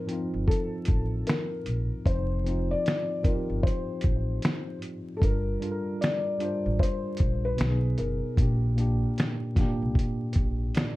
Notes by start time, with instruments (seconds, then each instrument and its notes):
Already playing: tine electric piano F3 C4 D#4 A#4 C5, felt piano A#4
0.07 tine electric piano F3 C4 D#4, closed hi-hat
0.12 tine electric piano F4
0.34 upright bass G1
0.48 felt piano A4, kick, closed hi-hat
0.85 upright bass A1, kick, closed hi-hat
1.27 felt piano A#4, finger snap, snare, closed hi-hat
1.66 upright bass A#1, closed hi-hat
2.05 upright bass F1, tine electric piano F3 C4 D#4, felt piano C5, kick, closed hi-hat
2.10 tine electric piano C5
2.44 tine electric piano F3 C4 D#4, closed hi-hat
2.50 tine electric piano F4
2.71 felt piano D5
2.86 finger snap, snare, closed hi-hat
3.23 tine electric piano F3 C4 D#4, felt piano A#4, kick, closed hi-hat
3.29 tine electric piano F4
3.35 tine electric piano G4
3.50 upright bass G1
3.63 felt piano C5, kick, closed hi-hat
4.01 upright bass A1, kick, closed hi-hat
4.42 finger snap, snare, closed hi-hat
4.82 closed hi-hat
5.17 tine electric piano G3, felt piano A4
5.22 upright bass G1, tine electric piano D4 F4, felt piano A#4, kick, closed hi-hat
5.26 tine electric piano A#4
5.60 tine electric piano G3 D4 F4, closed hi-hat
5.65 tine electric piano A4
5.72 tine electric piano A#4
6.01 felt piano D5, finger snap, snare, closed hi-hat
6.38 tine electric piano G3 D4 F4, closed hi-hat
6.44 tine electric piano C5
6.66 upright bass A1
6.79 felt piano C5, kick, closed hi-hat
7.17 upright bass A#1, kick, closed hi-hat
7.45 felt piano B4
7.56 upright bass B1, tine electric piano B2 B3 D#4, closed hi-hat
7.61 tine electric piano F#4, finger snap, snare
7.69 tine electric piano G#4
7.98 upright bass F#1, felt piano A#4, closed hi-hat
8.36 upright bass A#1, tine electric piano A#2 A#3 D4, kick, closed hi-hat
8.42 tine electric piano G4
8.75 tine electric piano A#2 A#3 D4, closed hi-hat
8.81 tine electric piano G4
9.18 finger snap, snare, closed hi-hat
9.55 tine electric piano A#2 A#3 D4, kick, snare, closed hi-hat
9.61 tine electric piano G4
9.82 upright bass C2
9.95 kick, closed hi-hat
10.33 upright bass A#1, kick, closed hi-hat
10.75 tine electric piano F4 D5, finger snap, snare, closed hi-hat